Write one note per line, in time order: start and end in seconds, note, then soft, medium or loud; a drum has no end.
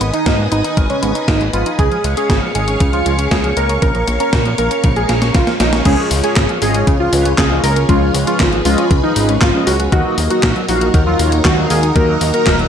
0.00 0.12 G#1 loud
0.00 0.09 B3 medium
0.00 1.77 B4 medium
0.00 1.75 D#5 medium
0.00 1.77 G#5 medium
0.00 1.75 D#6 medium
0.00 closed hi-hat medium
0.13 0.26 D#4 medium
0.13 0.38 D#4 medium
0.13 closed hi-hat soft
0.26 0.48 G#2 medium
0.26 0.35 D#3 medium
0.26 kick loud
0.26 snare loud
0.26 closed hi-hat medium
0.39 0.44 G#3 medium
0.52 0.63 G#1 medium
0.52 0.60 B3 medium
0.52 0.76 D#4 loud
0.52 closed hi-hat medium
0.64 0.76 D#4 medium
0.64 closed hi-hat soft
0.77 0.88 G#1 medium
0.77 0.85 D#3 medium
0.77 kick loud
0.77 closed hi-hat medium
0.90 0.95 G#3 medium
0.90 1.14 C#4 medium
0.90 closed hi-hat soft
1.02 1.13 G#1 loud
1.02 1.11 B3 medium
1.02 closed hi-hat medium
1.15 1.27 D#4 medium
1.15 closed hi-hat medium
1.28 1.50 G#1 loud
1.28 1.36 D#3 medium
1.28 1.44 D#4 medium
1.28 kick loud
1.28 snare loud
1.28 closed hi-hat medium
1.41 1.46 G#3 medium
1.41 closed hi-hat soft
1.53 1.64 G#1 loud
1.53 1.62 B3 medium
1.53 1.69 F4 medium
1.53 closed hi-hat medium
1.66 1.78 D#4 medium
1.66 closed hi-hat medium
1.79 1.90 C#2 loud
1.79 1.87 C#3 medium
1.79 2.03 G#4 loud
1.79 3.80 G#4 medium
1.79 5.82 C#5 medium
1.79 3.80 F5 medium
1.79 5.82 C#6 medium
1.79 kick loud
1.79 closed hi-hat medium
1.92 1.97 F3 medium
1.92 closed hi-hat soft
2.04 2.15 C#2 loud
2.04 2.13 G#3 medium
2.04 closed hi-hat medium
2.17 2.29 C#4 medium
2.17 2.41 G#4 loud
2.17 closed hi-hat medium
2.30 2.41 G#1 medium
2.30 2.38 C#3 medium
2.30 kick loud
2.30 snare loud
2.30 closed hi-hat medium
2.42 2.47 F3 medium
2.55 2.77 G#1 loud
2.55 2.63 G#3 medium
2.55 2.79 G#4 loud
2.55 closed hi-hat medium
2.68 2.80 C#4 medium
2.68 closed hi-hat medium
2.80 3.02 C#2 medium
2.80 2.89 C#3 medium
2.80 kick loud
2.80 closed hi-hat medium
2.93 2.98 F3 medium
2.93 3.17 F4 loud
2.93 closed hi-hat soft
3.06 3.28 C#2 loud
3.06 3.14 G#3 medium
3.06 closed hi-hat medium
3.19 3.31 C#4 medium
3.19 closed hi-hat medium
3.31 3.53 C#2 medium
3.31 3.40 C#3 medium
3.31 3.47 G#4 medium
3.31 kick loud
3.31 snare loud
3.31 closed hi-hat medium
3.44 3.49 F3 medium
3.44 closed hi-hat soft
3.57 3.79 C#2 loud
3.57 3.65 G#3 medium
3.57 3.73 A#4 loud
3.57 closed hi-hat medium
3.69 3.82 C#4 medium
3.69 closed hi-hat medium
3.82 4.04 A#1 loud
3.82 3.91 C#3 medium
3.82 4.06 A#4 loud
3.82 5.84 A#4 medium
3.82 5.84 F5 medium
3.82 kick loud
3.82 closed hi-hat medium
3.95 4.00 F3 medium
3.95 closed hi-hat soft
4.08 4.19 A#1 medium
4.08 4.16 A#3 medium
4.08 closed hi-hat medium
4.20 4.32 C#4 medium
4.20 4.44 A#4 loud
4.20 closed hi-hat medium
4.33 4.55 A#2 medium
4.33 4.41 C#3 medium
4.33 kick loud
4.33 snare loud
4.33 closed hi-hat medium
4.46 4.51 F3 medium
4.46 closed hi-hat soft
4.58 4.69 A#1 medium
4.58 4.67 A#3 medium
4.58 4.82 A#4 loud
4.58 closed hi-hat medium
4.71 4.83 C#4 medium
4.71 closed hi-hat medium
4.84 5.06 A#1 loud
4.84 4.92 C#3 medium
4.84 kick loud
4.84 closed hi-hat medium
4.96 5.02 F3 medium
4.96 5.20 G#4 loud
4.96 closed hi-hat soft
5.09 5.31 A#1 medium
5.09 5.18 A#3 medium
5.09 snare medium
5.09 closed hi-hat medium
5.22 5.34 C#4 medium
5.22 snare medium
5.22 closed hi-hat medium
5.35 5.46 A#1 medium
5.35 5.43 C#3 medium
5.35 5.51 F4 medium
5.35 kick loud
5.35 snare medium
5.35 closed hi-hat medium
5.47 5.52 F3 medium
5.47 snare medium
5.47 closed hi-hat soft
5.60 5.82 A#1 loud
5.60 5.68 A#3 medium
5.60 5.76 D#4 loud
5.60 snare medium
5.60 closed hi-hat medium
5.73 5.85 C#4 medium
5.73 snare medium
5.73 closed hi-hat medium
5.85 5.96 C#2 loud
5.85 5.94 C#3 loud
5.85 6.21 G#3 medium
5.85 6.21 C#4 medium
5.85 9.89 F4 medium
5.85 6.21 F4 medium
5.85 6.09 G#4 loud
5.85 9.88 G#4 medium
5.85 7.87 C#5 medium
5.85 6.21 C#5 loud
5.85 kick loud
5.85 closed hi-hat medium
5.85 crash loud
5.98 6.07 F3 medium
6.11 6.22 C#2 loud
6.11 6.23 G#3 medium
6.11 open hi-hat loud
6.23 6.43 G#3 medium
6.23 6.36 C#4 medium
6.23 6.43 C#4 medium
6.23 6.43 F4 medium
6.23 6.48 G#4 medium
6.23 6.43 C#5 medium
6.23 closed hi-hat medium
6.36 6.47 G#1 medium
6.36 6.45 C#3 loud
6.36 kick loud
6.36 snare loud
6.36 clap loud
6.36 closed hi-hat medium
6.49 6.57 F3 medium
6.49 closed hi-hat soft
6.62 6.84 G#1 loud
6.62 6.74 G#3 medium
6.62 6.82 G#3 loud
6.62 6.82 C#4 medium
6.62 6.82 F4 medium
6.62 6.86 G#4 loud
6.62 6.82 D#5 loud
6.62 open hi-hat loud
6.74 6.87 C#4 medium
6.74 closed hi-hat medium
6.87 7.09 C#2 medium
6.87 6.96 C#3 loud
6.87 kick loud
6.87 closed hi-hat medium
7.00 7.08 F3 medium
7.00 7.24 F4 loud
7.12 7.34 C#2 loud
7.12 7.25 G#3 medium
7.12 7.32 G#3 medium
7.12 7.32 C#4 medium
7.12 7.32 F4 medium
7.12 7.32 B4 loud
7.12 open hi-hat loud
7.25 7.37 C#4 medium
7.25 closed hi-hat medium
7.38 7.60 C#2 medium
7.38 7.46 C#3 loud
7.38 7.54 G#4 medium
7.38 kick loud
7.38 snare loud
7.38 clap loud
7.38 closed hi-hat medium
7.51 7.59 F3 medium
7.51 7.70 G#3 loud
7.51 7.70 C#4 medium
7.51 7.70 F4 loud
7.51 7.71 D#5 loud
7.63 7.85 C#2 loud
7.63 7.76 G#3 medium
7.63 7.79 A#4 medium
7.63 open hi-hat loud
7.76 7.88 C#4 medium
7.76 closed hi-hat medium
7.89 8.11 C#2 loud
7.89 7.97 C#3 loud
7.89 8.24 G#3 medium
7.89 8.24 C#4 medium
7.89 8.13 F4 loud
7.89 8.24 F4 medium
7.89 9.90 B4 medium
7.89 8.24 C#5 loud
7.89 kick loud
7.89 closed hi-hat medium
8.02 8.10 F3 medium
8.14 8.25 C#2 loud
8.14 8.26 G#3 medium
8.14 open hi-hat loud
8.27 8.47 G#3 medium
8.27 8.39 C#4 medium
8.27 8.47 C#4 medium
8.27 8.51 F4 medium
8.27 8.47 F4 medium
8.27 8.47 C#5 medium
8.27 closed hi-hat medium
8.40 8.62 G#1 medium
8.40 8.48 C#3 loud
8.40 kick loud
8.40 snare loud
8.40 clap loud
8.40 closed hi-hat medium
8.52 8.61 F3 medium
8.52 closed hi-hat soft
8.65 8.76 C#2 medium
8.65 8.77 G#3 medium
8.65 8.85 G#3 loud
8.65 8.85 C#4 medium
8.65 8.89 F4 loud
8.65 8.85 F4 medium
8.65 8.85 D#5 loud
8.65 open hi-hat loud
8.78 8.90 C#4 medium
8.78 closed hi-hat medium
8.91 9.02 C#2 medium
8.91 8.99 C#3 loud
8.91 kick loud
8.91 closed hi-hat medium
9.03 9.12 F3 medium
9.03 9.27 D#4 loud
9.16 9.38 G#1 medium
9.16 9.28 G#3 medium
9.16 9.36 G#3 medium
9.16 9.36 C#4 medium
9.16 9.36 F4 medium
9.16 9.36 B4 medium
9.16 open hi-hat loud
9.28 9.41 C#4 medium
9.28 closed hi-hat medium
9.41 9.52 G#1 loud
9.41 9.50 C#3 loud
9.41 9.57 F4 medium
9.41 kick loud
9.41 snare loud
9.41 clap loud
9.41 closed hi-hat medium
9.54 9.63 F3 medium
9.54 9.74 G#3 loud
9.54 9.74 C#4 medium
9.54 9.74 F4 medium
9.54 9.74 D#5 loud
9.67 9.89 C#2 loud
9.67 9.79 G#3 medium
9.67 9.83 F#4 loud
9.67 open hi-hat loud
9.79 9.92 C#4 medium
9.79 closed hi-hat medium
9.92 10.03 D#2 loud
9.92 10.01 D#3 loud
9.92 10.27 A#3 medium
9.92 12.68 D#4 medium
9.92 10.28 D#4 medium
9.92 12.68 F#4 medium
9.92 10.28 F#4 medium
9.92 10.16 F#4 loud
9.92 12.68 A#4 medium
9.92 10.27 D#5 loud
9.92 kick loud
9.92 closed hi-hat medium
10.05 10.13 F#3 medium
10.18 10.29 D#2 loud
10.18 10.30 A#3 medium
10.18 open hi-hat loud
10.30 10.50 A#3 medium
10.30 10.43 D#4 medium
10.30 10.50 D#4 medium
10.30 10.50 F#4 medium
10.30 10.54 F#4 medium
10.30 10.50 D#5 medium
10.30 closed hi-hat medium
10.43 10.54 A#1 medium
10.43 10.52 D#3 loud
10.43 kick loud
10.43 snare loud
10.43 clap loud
10.43 closed hi-hat medium
10.56 10.64 F#3 medium
10.56 closed hi-hat soft
10.68 10.90 A#1 loud
10.68 10.81 A#3 medium
10.68 10.88 A#3 loud
10.68 10.88 D#4 loud
10.68 10.92 F#4 loud
10.68 10.88 F#4 medium
10.68 10.88 F5 loud
10.68 open hi-hat loud
10.81 10.93 D#4 medium
10.81 closed hi-hat medium
10.94 11.16 D#2 medium
10.94 11.03 D#3 loud
10.94 kick loud
10.94 closed hi-hat medium
11.07 11.15 F#3 medium
11.07 11.31 F4 loud
11.19 11.41 D#2 loud
11.19 11.39 A#3 medium
11.19 11.32 A#3 medium
11.19 11.39 D#4 medium
11.19 11.39 F#4 medium
11.19 11.39 C#5 loud
11.19 open hi-hat loud
11.32 11.44 D#4 medium
11.32 closed hi-hat medium
11.45 11.67 D#2 medium
11.45 11.53 D#3 loud
11.45 11.61 F#4 medium
11.45 kick loud
11.45 snare loud
11.45 clap loud
11.45 closed hi-hat medium
11.58 11.66 F#3 medium
11.58 11.77 A#3 loud
11.58 11.77 D#4 loud
11.58 11.77 F#4 medium
11.58 11.77 F5 loud
11.70 11.92 D#2 loud
11.70 11.82 A#3 medium
11.70 11.86 G#4 medium
11.70 open hi-hat loud
11.83 11.95 D#4 medium
11.83 closed hi-hat soft
11.96 12.18 D#2 loud
11.96 12.04 D#3 loud
11.96 12.31 A#3 medium
11.96 12.31 D#4 medium
11.96 12.31 F#4 medium
11.96 12.20 A#4 loud
11.96 12.31 D#5 loud
11.96 kick loud
11.96 closed hi-hat medium
12.09 12.17 F#3 medium
12.21 12.32 D#2 loud
12.21 12.33 A#3 medium
12.21 open hi-hat loud
12.34 12.53 A#3 medium
12.34 12.54 D#4 medium
12.34 12.46 D#4 medium
12.34 12.54 F#4 medium
12.34 12.58 A#4 medium
12.34 12.54 D#5 medium
12.34 closed hi-hat soft
12.47 12.68 D#1 medium
12.47 12.55 D#3 loud
12.47 kick loud
12.47 snare loud
12.47 clap loud
12.47 closed hi-hat medium
12.59 12.68 F#3 medium
12.59 closed hi-hat soft